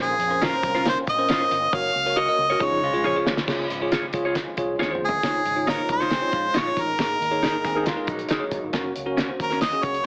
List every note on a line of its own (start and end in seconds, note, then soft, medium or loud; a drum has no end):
0.00 0.13 A#1 loud
0.00 0.59 A#2 medium
0.00 2.57 A#3 medium
0.00 1.71 C4 medium
0.00 0.14 C#4 medium
0.00 3.45 C#4 medium
0.00 1.71 F4 medium
0.00 0.46 G#4 medium
0.00 0.15 A#4 medium
0.00 0.15 C5 medium
0.19 0.50 F2 loud
0.19 closed hi-hat medium
0.30 0.41 C#4 medium
0.30 0.42 A#4 medium
0.30 0.42 C5 medium
0.42 0.54 C#4 medium
0.42 0.54 F4 medium
0.42 0.87 A#4 loud
0.42 0.55 C5 medium
0.42 snare loud
0.42 closed hi-hat medium
0.53 0.70 C#4 medium
0.53 0.70 A#4 medium
0.53 0.70 C5 medium
0.63 0.95 C2 medium
0.63 kick medium
0.63 closed hi-hat medium
0.75 0.85 C#4 medium
0.75 0.85 F4 medium
0.75 0.84 C5 medium
0.75 snare soft
0.85 1.02 C#4 medium
0.85 1.02 A#4 medium
0.85 1.03 C5 medium
0.85 0.98 C5 medium
0.85 snare loud
0.85 closed hi-hat loud
1.07 1.29 A#1 medium
1.07 1.76 D#5 loud
1.07 kick medium
1.07 closed hi-hat medium
1.18 1.30 C#4 medium
1.18 1.30 A#4 medium
1.18 1.30 C5 medium
1.29 1.45 G#1 medium
1.29 1.41 C#4 medium
1.29 1.42 F4 medium
1.29 1.42 C5 medium
1.29 snare loud
1.29 closed hi-hat medium
1.40 1.57 C#4 medium
1.40 1.57 A#4 medium
1.40 1.58 C5 medium
1.51 1.67 G1 loud
1.51 closed hi-hat medium
1.72 1.89 F#1 loud
1.72 2.60 F#3 medium
1.72 2.59 F#4 medium
1.72 1.90 F#4 medium
1.72 1.90 A#4 medium
1.72 1.90 C#5 medium
1.72 2.20 F5 loud
1.72 kick loud
1.95 2.27 C#2 medium
2.06 2.17 F#4 medium
2.06 2.17 A#4 medium
2.06 2.18 C#5 medium
2.17 2.29 F#4 medium
2.17 2.30 A#4 medium
2.17 2.30 C#5 medium
2.17 2.65 D#5 loud
2.28 2.45 F#4 medium
2.28 2.46 A#4 medium
2.28 2.45 D#5 medium
2.38 2.54 C#2 medium
2.50 2.60 F#4 medium
2.50 2.60 A#4 medium
2.50 2.59 C#5 medium
2.60 2.68 C#2 loud
2.60 3.22 C#3 medium
2.60 3.46 F3 medium
2.60 3.46 G#3 medium
2.60 2.81 D#4 medium
2.60 2.77 F4 medium
2.60 3.46 F4 medium
2.60 2.77 G#4 medium
2.60 2.78 C#5 medium
2.60 kick medium
2.64 3.28 C#5 medium
2.71 2.79 F2 medium
2.82 2.90 C#2 medium
2.82 3.04 G#3 medium
2.82 3.04 F4 medium
2.93 3.01 C2 medium
2.93 3.05 F4 medium
2.93 3.05 G#4 medium
2.93 3.05 C#5 medium
3.04 3.12 A#1 loud
3.04 3.46 F3 medium
3.04 3.46 C#4 medium
3.04 3.17 F4 medium
3.04 3.17 G#4 medium
3.04 3.18 C#5 medium
3.16 3.33 F4 medium
3.16 3.33 G#4 medium
3.16 3.33 C#5 medium
3.26 3.42 D2 medium
3.26 snare loud
3.37 snare loud
3.47 3.64 C#2 loud
3.47 4.10 C#3 medium
3.47 5.22 F3 medium
3.47 5.22 G#3 medium
3.47 5.21 C#4 medium
3.47 5.22 F4 medium
3.47 3.65 F4 medium
3.47 3.65 G#4 medium
3.47 3.66 C#5 medium
3.47 kick loud
3.47 snare medium
3.47 crash medium
3.70 4.01 G#1 medium
3.70 closed hi-hat medium
3.82 3.99 F4 medium
3.82 3.99 G#4 medium
3.82 3.99 C#5 medium
3.92 4.04 F4 medium
3.92 4.05 G#4 medium
3.92 4.06 C#5 medium
3.92 snare medium
3.92 closed hi-hat medium
4.13 4.45 C#2 medium
4.13 4.37 F4 medium
4.13 4.37 G#4 medium
4.13 4.37 C#5 medium
4.13 kick medium
4.13 closed hi-hat medium
4.25 4.36 F4 soft
4.25 4.35 G#4 soft
4.25 4.35 C#5 medium
4.35 kick medium
4.35 snare medium
4.35 closed hi-hat medium
4.57 4.74 C2 medium
4.57 4.75 F4 loud
4.57 4.75 G#4 medium
4.57 4.75 C#5 medium
4.57 kick medium
4.57 closed hi-hat medium
4.79 4.96 D#2 medium
4.79 4.92 F4 medium
4.79 4.92 G#4 medium
4.79 4.93 C#5 loud
4.79 snare medium
4.90 5.08 F4 medium
4.90 5.08 G#4 medium
4.90 5.08 C5 medium
4.95 mid tom medium
5.02 5.18 D2 medium
5.02 5.65 G#4 medium
5.09 floor tom loud
5.23 5.39 C#2 loud
5.23 5.85 C#3 medium
5.23 6.97 F3 medium
5.23 8.70 G#3 medium
5.23 6.97 C#4 medium
5.23 8.70 D#4 medium
5.23 5.41 D#4 medium
5.23 5.41 F4 medium
5.23 5.41 C#5 medium
5.23 kick loud
5.23 snare medium
5.23 closed hi-hat medium
5.45 5.77 G#1 medium
5.45 closed hi-hat medium
5.56 5.68 D#4 medium
5.56 5.68 F4 medium
5.56 5.68 C#5 medium
5.67 5.80 D#4 medium
5.67 5.80 F4 medium
5.67 5.89 A#4 medium
5.67 5.81 C#5 medium
5.67 snare medium
5.67 closed hi-hat medium
5.78 6.01 D#4 medium
5.78 6.01 F4 medium
5.78 6.02 C#5 medium
5.89 6.21 C2 medium
5.89 6.60 C5 loud
5.89 kick medium
5.89 closed hi-hat medium
6.00 6.11 D#4 soft
6.00 6.11 F4 medium
6.00 6.10 C#5 medium
6.00 snare soft
6.11 6.32 C4 medium
6.11 6.32 G#4 medium
6.11 snare loud
6.11 closed hi-hat medium
6.21 6.45 D#4 medium
6.21 6.45 F4 medium
6.21 6.45 C#5 medium
6.32 6.49 A#1 medium
6.32 6.54 G#3 medium
6.32 6.54 F4 medium
6.32 kick medium
6.32 closed hi-hat medium
6.54 6.70 A#1 medium
6.54 6.67 D#4 medium
6.54 6.97 D#4 medium
6.54 6.68 F4 medium
6.54 6.68 C#5 medium
6.54 snare loud
6.54 closed hi-hat medium
6.59 6.83 C#5 loud
6.66 6.83 D#4 medium
6.66 6.84 F4 medium
6.66 6.84 C#5 medium
6.77 6.93 A1 medium
6.77 kick medium
6.77 closed hi-hat medium
6.81 8.11 A#4 loud
6.98 7.14 G#1 loud
6.98 7.61 G#2 medium
6.98 8.73 D#3 medium
6.98 10.06 A#3 medium
6.98 7.17 D#4 medium
6.98 7.17 G#4 medium
6.98 7.17 A#4 medium
6.98 kick loud
6.98 snare medium
6.98 closed hi-hat medium
7.20 7.52 D#2 medium
7.20 closed hi-hat medium
7.31 7.43 D#4 medium
7.31 7.43 G#4 medium
7.31 7.43 C#5 medium
7.43 7.55 D#4 medium
7.43 7.56 G#4 medium
7.43 7.56 A#4 medium
7.43 snare medium
7.43 closed hi-hat medium
7.52 7.76 D#4 medium
7.52 7.76 G#4 medium
7.52 7.76 A#4 medium
7.64 7.96 D#2 medium
7.64 7.86 C4 medium
7.64 7.86 G#4 medium
7.64 kick medium
7.64 closed hi-hat medium
7.75 7.86 D#4 medium
7.75 7.86 G#4 soft
7.75 7.85 A#4 soft
7.86 8.08 G#3 medium
7.86 8.08 F4 medium
7.86 snare loud
7.86 closed hi-hat medium
7.96 8.20 D#4 medium
7.96 8.20 G#4 medium
7.96 8.20 A#4 medium
8.07 8.24 A#1 medium
8.07 8.72 F#3 medium
8.07 8.71 D#4 medium
8.07 kick medium
8.07 closed hi-hat medium
8.19 closed hi-hat medium
8.29 8.38 C#2 medium
8.29 8.43 D#4 medium
8.29 8.44 G#4 medium
8.29 8.44 A#4 medium
8.29 snare loud
8.29 closed hi-hat medium
8.40 8.58 D#4 medium
8.40 8.58 G#4 medium
8.40 8.58 C#5 medium
8.51 8.60 G#1 medium
8.51 kick medium
8.51 closed hi-hat medium
8.64 8.71 G1 medium
8.73 8.90 F#1 loud
8.73 10.06 F#3 medium
8.73 8.91 C#4 medium
8.73 10.06 C#4 medium
8.73 8.91 F#4 medium
8.73 10.06 F#4 medium
8.73 8.91 A#4 medium
8.73 kick medium
8.73 snare medium
8.73 closed hi-hat medium
8.96 9.28 C#2 medium
8.96 closed hi-hat medium
9.06 9.18 C#4 medium
9.06 9.18 F#4 medium
9.06 9.18 A#4 medium
9.17 9.30 C#4 medium
9.17 9.31 F#4 medium
9.17 9.31 A#4 medium
9.17 snare loud
9.17 closed hi-hat medium
9.29 9.52 C#4 medium
9.29 9.52 F#4 medium
9.29 9.52 C5 medium
9.40 9.72 D#2 medium
9.40 9.61 A#4 medium
9.40 kick medium
9.40 closed hi-hat medium
9.51 9.61 C#4 medium
9.51 9.61 F#4 medium
9.51 9.60 A#4 medium
9.51 snare soft
9.61 9.85 D#5 medium
9.61 snare loud
9.61 closed hi-hat medium
9.72 9.95 C#4 medium
9.72 9.96 F#4 medium
9.72 9.96 G#4 medium
9.72 closed hi-hat soft
9.83 9.99 C#2 medium
9.83 10.06 C#5 medium
9.83 kick medium
9.83 closed hi-hat medium
9.94 closed hi-hat medium